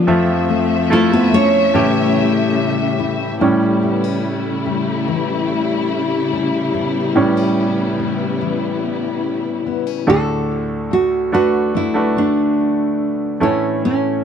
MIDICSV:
0, 0, Header, 1, 5, 480
1, 0, Start_track
1, 0, Tempo, 833333
1, 45, Time_signature, 4, 2, 24, 8
1, 8202, End_track
2, 0, Start_track
2, 0, Title_t, "Nylon-string guitar"
2, 0, Program_c, 0, 24
2, 0, Note_on_c, 0, 53, 60
2, 0, Note_on_c, 0, 65, 83
2, 505, Note_off_c, 0, 53, 0
2, 533, Note_on_c, 0, 57, 61
2, 535, Note_on_c, 0, 69, 92
2, 549, Note_off_c, 0, 65, 0
2, 641, Note_off_c, 0, 57, 0
2, 641, Note_off_c, 0, 69, 0
2, 653, Note_on_c, 0, 71, 80
2, 655, Note_on_c, 0, 59, 63
2, 762, Note_off_c, 0, 59, 0
2, 771, Note_off_c, 0, 71, 0
2, 773, Note_on_c, 0, 73, 95
2, 775, Note_on_c, 0, 61, 69
2, 1706, Note_off_c, 0, 73, 0
2, 1707, Note_off_c, 0, 61, 0
2, 5816, Note_on_c, 0, 69, 83
2, 6293, Note_off_c, 0, 69, 0
2, 6296, Note_on_c, 0, 66, 76
2, 6514, Note_off_c, 0, 66, 0
2, 6534, Note_on_c, 0, 66, 77
2, 6775, Note_off_c, 0, 66, 0
2, 6777, Note_on_c, 0, 64, 75
2, 7017, Note_on_c, 0, 62, 73
2, 7018, Note_off_c, 0, 64, 0
2, 7733, Note_off_c, 0, 62, 0
2, 7736, Note_on_c, 0, 61, 74
2, 7971, Note_off_c, 0, 61, 0
2, 7978, Note_on_c, 0, 61, 68
2, 8202, Note_off_c, 0, 61, 0
2, 8202, End_track
3, 0, Start_track
3, 0, Title_t, "Grand piano"
3, 0, Program_c, 1, 0
3, 0, Control_c, 1, 64, 127
3, 41, Note_on_c, 1, 57, 60
3, 44, Note_on_c, 1, 60, 56
3, 45, Note_on_c, 1, 41, 59
3, 47, Note_on_c, 1, 76, 56
3, 49, Note_on_c, 1, 65, 67
3, 53, Control_c, 1, 64, 0
3, 139, Control_c, 1, 64, 127
3, 499, Note_off_c, 1, 57, 0
3, 500, Note_off_c, 1, 60, 0
3, 502, Note_off_c, 1, 76, 0
3, 503, Note_off_c, 1, 65, 0
3, 519, Note_on_c, 1, 57, 66
3, 524, Note_on_c, 1, 64, 59
3, 529, Note_on_c, 1, 65, 74
3, 982, Note_off_c, 1, 41, 0
3, 992, Note_off_c, 1, 57, 0
3, 997, Note_off_c, 1, 64, 0
3, 1000, Note_on_c, 1, 57, 58
3, 1002, Note_on_c, 1, 61, 58
3, 1004, Note_on_c, 1, 45, 48
3, 1005, Note_on_c, 1, 52, 60
3, 1006, Note_on_c, 1, 64, 53
3, 1007, Note_off_c, 1, 65, 0
3, 1010, Note_on_c, 1, 67, 75
3, 1014, Control_c, 1, 64, 0
3, 1119, Control_c, 1, 64, 127
3, 1915, Note_off_c, 1, 57, 0
3, 1916, Note_off_c, 1, 61, 0
3, 1917, Note_off_c, 1, 64, 0
3, 1920, Note_off_c, 1, 67, 0
3, 1942, Note_off_c, 1, 45, 0
3, 1942, Note_off_c, 1, 52, 0
3, 1964, Note_on_c, 1, 45, 41
3, 1968, Note_on_c, 1, 55, 36
3, 1969, Note_on_c, 1, 61, 47
3, 1973, Control_c, 1, 64, 0
3, 2061, Control_c, 1, 64, 127
3, 2662, Note_off_c, 1, 45, 0
3, 2663, Note_off_c, 1, 55, 0
3, 2664, Note_off_c, 1, 61, 0
3, 4121, Note_on_c, 1, 45, 46
3, 4124, Note_on_c, 1, 55, 39
3, 4128, Note_on_c, 1, 61, 53
3, 4820, Note_off_c, 1, 45, 0
3, 4821, Note_off_c, 1, 55, 0
3, 4823, Note_off_c, 1, 61, 0
3, 5800, Note_on_c, 1, 57, 51
3, 5803, Note_on_c, 1, 62, 47
3, 5804, Note_on_c, 1, 38, 44
3, 5804, Note_on_c, 1, 45, 46
3, 5806, Note_on_c, 1, 66, 50
3, 5809, Note_on_c, 1, 69, 59
3, 5813, Control_c, 1, 64, 0
3, 5902, Control_c, 1, 64, 127
3, 6486, Note_off_c, 1, 57, 0
3, 6488, Note_off_c, 1, 62, 0
3, 6489, Note_off_c, 1, 66, 0
3, 6491, Note_off_c, 1, 69, 0
3, 6522, Note_on_c, 1, 57, 57
3, 6524, Note_on_c, 1, 62, 52
3, 6527, Note_on_c, 1, 66, 47
3, 6529, Note_on_c, 1, 71, 64
3, 6865, Note_off_c, 1, 57, 0
3, 6866, Note_off_c, 1, 62, 0
3, 6868, Note_off_c, 1, 66, 0
3, 6869, Note_off_c, 1, 71, 0
3, 6878, Note_on_c, 1, 57, 57
3, 6880, Note_on_c, 1, 62, 49
3, 6884, Note_on_c, 1, 66, 43
3, 6887, Note_on_c, 1, 71, 54
3, 7679, Note_off_c, 1, 57, 0
3, 7681, Note_off_c, 1, 62, 0
3, 7682, Note_off_c, 1, 66, 0
3, 7684, Note_off_c, 1, 71, 0
3, 7701, Note_off_c, 1, 45, 0
3, 7702, Note_off_c, 1, 38, 0
3, 7721, Note_on_c, 1, 57, 57
3, 7724, Note_on_c, 1, 61, 50
3, 7725, Note_on_c, 1, 52, 44
3, 7726, Note_on_c, 1, 45, 42
3, 7728, Note_on_c, 1, 64, 51
3, 7731, Note_on_c, 1, 69, 55
3, 7732, Control_c, 1, 64, 0
3, 7827, Control_c, 1, 64, 127
3, 8202, Note_off_c, 1, 45, 0
3, 8202, Note_off_c, 1, 52, 0
3, 8202, Note_off_c, 1, 57, 0
3, 8202, Note_off_c, 1, 61, 0
3, 8202, Note_off_c, 1, 64, 0
3, 8202, Note_off_c, 1, 69, 0
3, 8202, End_track
4, 0, Start_track
4, 0, Title_t, "Steel-string acoustic guitar"
4, 0, Program_c, 2, 25
4, 0, Note_on_c, 2, 59, 60
4, 0, Note_on_c, 2, 62, 53
4, 44, Note_on_c, 2, 53, 74
4, 94, Note_off_c, 2, 59, 0
4, 94, Note_off_c, 2, 62, 0
4, 287, Note_on_c, 2, 57, 55
4, 291, Note_on_c, 2, 60, 56
4, 528, Note_off_c, 2, 60, 0
4, 764, Note_off_c, 2, 57, 0
4, 766, Note_on_c, 2, 57, 58
4, 1004, Note_on_c, 2, 45, 75
4, 1053, Note_off_c, 2, 53, 0
4, 1245, Note_on_c, 2, 61, 53
4, 1724, Note_on_c, 2, 64, 60
4, 1957, Note_off_c, 2, 45, 0
4, 1964, Note_on_c, 2, 45, 69
4, 2201, Note_off_c, 2, 61, 0
4, 2204, Note_on_c, 2, 59, 49
4, 2221, Note_off_c, 2, 57, 0
4, 2325, Note_off_c, 2, 59, 0
4, 2325, Note_on_c, 2, 61, 46
4, 2684, Note_on_c, 2, 55, 49
4, 2923, Note_on_c, 2, 52, 54
4, 3639, Note_off_c, 2, 61, 0
4, 3646, Note_on_c, 2, 61, 47
4, 3740, Note_off_c, 2, 64, 0
4, 3878, Note_off_c, 2, 45, 0
4, 3885, Note_on_c, 2, 45, 63
4, 4123, Note_off_c, 2, 61, 0
4, 4125, Note_on_c, 2, 59, 49
4, 4244, Note_off_c, 2, 59, 0
4, 4244, Note_on_c, 2, 61, 41
4, 4597, Note_off_c, 2, 55, 0
4, 4604, Note_on_c, 2, 55, 48
4, 4838, Note_off_c, 2, 52, 0
4, 4845, Note_on_c, 2, 52, 59
4, 5564, Note_off_c, 2, 61, 0
4, 5566, Note_on_c, 2, 59, 42
4, 5683, Note_off_c, 2, 59, 0
4, 5683, Note_on_c, 2, 61, 41
4, 5799, Note_off_c, 2, 52, 0
4, 5802, Note_on_c, 2, 50, 57
4, 5805, Note_off_c, 2, 45, 0
4, 5852, Note_off_c, 2, 61, 0
4, 5853, Note_off_c, 2, 55, 0
4, 6284, Note_on_c, 2, 57, 48
4, 6764, Note_off_c, 2, 57, 0
4, 6767, Note_on_c, 2, 57, 54
4, 6770, Note_on_c, 2, 62, 47
4, 6773, Note_on_c, 2, 66, 54
4, 7000, Note_off_c, 2, 62, 0
4, 7007, Note_on_c, 2, 62, 51
4, 7723, Note_off_c, 2, 50, 0
4, 7725, Note_on_c, 2, 45, 63
4, 7774, Note_off_c, 2, 62, 0
4, 7777, Note_off_c, 2, 66, 0
4, 8202, Note_off_c, 2, 45, 0
4, 8202, Note_off_c, 2, 57, 0
4, 8202, End_track
5, 0, Start_track
5, 0, Title_t, "String section"
5, 0, Program_c, 3, 48
5, 46, Note_on_c, 3, 53, 64
5, 46, Note_on_c, 3, 76, 78
5, 47, Note_on_c, 3, 57, 67
5, 996, Note_off_c, 3, 53, 0
5, 1002, Note_on_c, 3, 49, 71
5, 1002, Note_on_c, 3, 55, 55
5, 1946, Note_off_c, 3, 76, 0
5, 1947, Note_off_c, 3, 57, 0
5, 1954, Note_off_c, 3, 49, 0
5, 1954, Note_off_c, 3, 55, 0
5, 1961, Note_on_c, 3, 55, 61
5, 1963, Note_on_c, 3, 57, 53
5, 1964, Note_on_c, 3, 49, 54
5, 1964, Note_on_c, 3, 64, 73
5, 3865, Note_off_c, 3, 57, 0
5, 3885, Note_on_c, 3, 59, 56
5, 5780, Note_off_c, 3, 55, 0
5, 5781, Note_off_c, 3, 49, 0
5, 5782, Note_off_c, 3, 64, 0
5, 5786, Note_off_c, 3, 59, 0
5, 8202, End_track
0, 0, End_of_file